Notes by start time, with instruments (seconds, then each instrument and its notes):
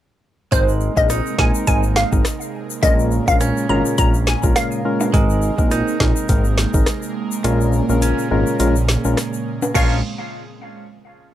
0.52 analog synth bass G#1, analog synth pad C3 G#3 A#3, synth stab G#3 C4 D#4 A#4, clean electric guitar G#3, synth pluck C5, kick, closed hi-hat, shaker
0.69 shaker
0.80 shaker
0.97 analog synth bass A#1, synth stab G#3 C4 D#4 A#4, synth pluck D#5, kick, shaker
1.10 clean electric guitar D#4, cross-stick, closed hi-hat, shaker
1.26 shaker
1.38 analog synth bass A#1, synth stab G#3 C4 D#4 A#4, synth pluck G#5, kick, snare
1.54 shaker
1.67 analog synth bass G#1, synth stab G#3 C4 D#4 A#4, synth pluck G#5, kick, closed hi-hat, shaker
1.83 shaker
1.96 synth pluck F5, snare, shaker
2.12 analog synth bass G#1, synth stab G#3 C4 D#4 A#4, kick, shaker
2.25 cross-stick, snare, closed hi-hat, shaker
2.41 shaker
2.70 shaker
2.82 analog synth bass A#1, clean electric guitar A#2, analog synth pad C#3 A#3, synth stab G#3 C#4 F4 A#4, synth pluck D#5, kick, closed hi-hat, shaker
2.99 shaker
3.11 shaker
3.28 analog synth bass A#1, synth stab G#3 C#4 F4 A#4, synth pluck F5, kick, shaker
3.41 clean electric guitar C#4, cross-stick, closed hi-hat, shaker
3.57 shaker
3.69 analog synth bass G#1, synth stab G#3 C#4 F4 A#4, synth pluck A#5
3.85 shaker
3.98 analog synth bass A#1, synth stab G#3 C#4 F4 A#4, synth pluck A#5, kick, closed hi-hat, shaker
4.14 shaker
4.27 synth pluck G#5, snare, shaker
4.43 analog synth bass A#1, synth stab G#3 C#4 F4 A#4, kick, shaker
4.56 synth pluck F5, cross-stick, snare, closed hi-hat, shaker
4.72 shaker
4.85 synth stab G#3 C#4 F4 A#4
5.01 high timbale, shaker
5.13 analog synth bass G#1, analog synth pad C3 G#3, synth stab G#3 C4 D#4 A#4, clean electric guitar G#3, kick, closed hi-hat, shaker
5.30 shaker
5.42 shaker
5.58 analog synth bass A#1, synth stab G#3 C4 D#4 A#4, kick, shaker
5.71 clean electric guitar D#4, cross-stick, closed hi-hat, shaker
5.88 shaker
6.00 analog synth bass A#1, synth stab G#3 C4 D#4 A#4, kick, snare
6.16 shaker
6.29 analog synth bass G#1, synth stab G#3 C4 D#4 A#4, kick, closed hi-hat, shaker
6.45 shaker
6.58 snare, shaker
6.74 analog synth bass G#1, synth stab G#3 C4 D#4 A#4, kick, shaker
6.86 cross-stick, snare, closed hi-hat, shaker
7.02 shaker
7.31 shaker
7.44 analog synth bass A#1, clean electric guitar A#2, analog synth pad C#3, synth stab G#3 C#4 F4 A#4, closed hi-hat, shaker
7.61 shaker
7.73 shaker
7.89 analog synth bass A#1, synth stab G#3 C#4 F4 A#4, shaker
8.02 clean electric guitar C#4, closed hi-hat, shaker
8.19 shaker
8.31 analog synth bass G#1, synth stab G#3 C#4 F4 A#4
8.47 shaker
8.59 analog synth bass A#1, synth stab G#3 C#4 F4 A#4, closed hi-hat, shaker
8.76 shaker
8.89 snare, shaker
9.05 analog synth bass A#1, synth stab G#3 C#4 F4 A#4, shaker
9.17 cross-stick, snare, closed hi-hat, shaker
9.33 shaker
9.62 high timbale, shaker
9.74 analog synth bass A#1, clean electric guitar A#2 F3 G#3 C#4 F4 C#5, synth stab G#3 C#4 F4 A#4, synth pluck F5, kick, crash, shaker